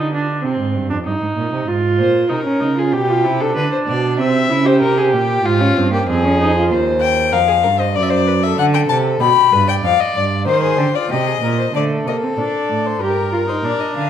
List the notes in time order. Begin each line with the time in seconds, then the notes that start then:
Already playing: D3 D#4
0.13 D4
0.44 C3 C4
0.59 G#2
0.75 G2
0.90 F2 D4
1.05 G2 D#4
1.21 G#2
1.37 A#2
1.52 C3
1.67 G#2 F4
1.99 A#2 C5
2.29 C3 D#4 A#4
2.45 C#4
2.60 C#3 D#4
2.77 F4 G#4
2.92 B2 G4
3.09 F4
3.24 C3 E4
3.40 D4 A4
3.55 D3 B4
3.72 C5
3.87 B2 D5
4.18 C3 C4 E5
4.49 C#3 E4
4.65 G4 C5
4.80 C3 A#4
4.98 G#4
5.13 A#2 G4
5.44 G#2 F4
5.60 C#4
5.76 G2 C4
5.92 A#3 G4
6.07 F2 C4 G#4
6.24 C#4
6.40 D#4
6.56 F4
6.70 D#2 C5
7.01 G5
7.32 F2 A#4 F5
7.47 G#4
7.63 G2 A#4
7.78 C5 D#5
7.95 F#2 D5
8.03 E5
8.09 C5 D5
8.27 B4
8.42 A4 E5
8.57 D3 F#5
8.74 G5
8.89 C3 A5
9.19 B2 G4 B5
9.51 G2 B4
9.68 D5 G5
9.83 F2 F5
10.00 D#5
10.14 G2 D5
10.46 D#3 C5
10.63 G#4
10.78 D3 G4
10.95 F4 D5
11.09 C3 G4 D#5
11.27 G#4
11.41 A#2 A#4
11.59 C5
11.73 D3 A3 A4 D5
12.05 C3 A#3 D#5
12.23 C4
12.37 A#2 D4 D5
12.68 A2
12.87 C5
13.00 G2 G4 A#4
13.32 F4
13.48 D#4 C5
13.62 A#2 D4 D5
13.81 D#5
13.94 D3 F5